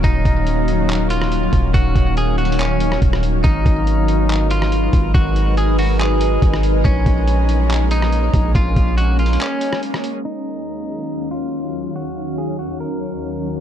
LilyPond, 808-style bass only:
\new Staff \with { instrumentName = "808-style bass" } { \clef bass \time 4/4 \key ees \minor \tempo 4 = 141 ees,,8 ees,,2. ees,,8 | ees,,8 ees,,2~ ees,,8 ees,,4 | aes,,8 aes,,2. aes,,8 | aes,,2. aes,,4 |
bes,,8 bes,,2. bes,,8 | bes,,8 bes,,4. r2 | r1 | r1 | }